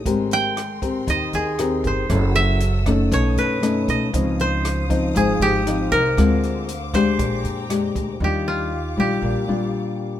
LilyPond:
<<
  \new Staff \with { instrumentName = "String section" } { \time 4/4 \key bes \mixolydian \tempo 4 = 118 << { c'''1 | e'''2 dis'''2 | ees'''1 | d'''1 |
\key ees \major d'''1 | } \\ { <bes' g''>1 | <a' fis''>2 <cis'' a''>2 | <c'' f''>1~ | <c'' f''>2 <g'' bes''>2 |
<g' f''>1 | } >> }
  \new Staff \with { instrumentName = "Koto" } { \time 4/4 \key bes \mixolydian r8 g''4. ees''8 aes'4 c''8 | r8 e''4. cis''8 b'4 dis''8 | r8 c''4. aes'8 g'4 bes'8~ | bes'4. c''4. r4 |
\key ees \major g'8 f'4 g'8 r2 | }
  \new Staff \with { instrumentName = "Nylon-string guitar" } { \time 4/4 \key bes \mixolydian << { <c' g' bes'>4 r8 <c' g' bes'>4. <c' g' bes'>4 | <cis' e' a'>4 r8 <a cis' ees'>4. <a cis' dis'>4 | <f c' ees'>4. <f c' ees'>4. <f c' ees'>8 r8 | <aes c' f'>4 r8 <aes d' g'>4. <aes d' g'>4 |
\key ees \major <g d' f'>4 r8 <g d' f'>4 <g d' f'>4. | } \\ { aes2 ees2 | fis2 b,2 | des2 aes,2 | d2 bes,2 |
ees2 bes,2 | } >> }
  \new Staff \with { instrumentName = "Upright bass" } { \clef bass \time 4/4 \key bes \mixolydian aes,,2 ees,8 ees,4 g,,8 | fis,,2 b,,8 fis,4 b,,8 | des,2 aes,,8 aes,,4 c,8 | d,2 bes,,8 f,4 d,8 |
\key ees \major ees,4. bes,,8 bes,,16 r16 bes,,8 r4 | }
  \new DrumStaff \with { instrumentName = "Drums" } \drummode { \time 4/4 <hh bd>8 hh8 <hh ss>8 <hh bd>8 <hh bd>8 hh8 <hh ss>8 <hh bd>8 | <hh bd ss>8 hh8 hh8 <hh bd ss>8 <hh bd>8 hh8 <hh ss>8 <hh bd>8 | <hh bd>8 hh8 <hh ss>8 <hh bd>8 <hh bd>8 hh8 <hh ss>8 <hh bd>8 | <hh bd ss>8 hh8 hh8 <hh bd ss>8 <hh bd>8 hh8 <hh ss>8 <hh bd>8 |
r4 r4 r4 r4 | }
>>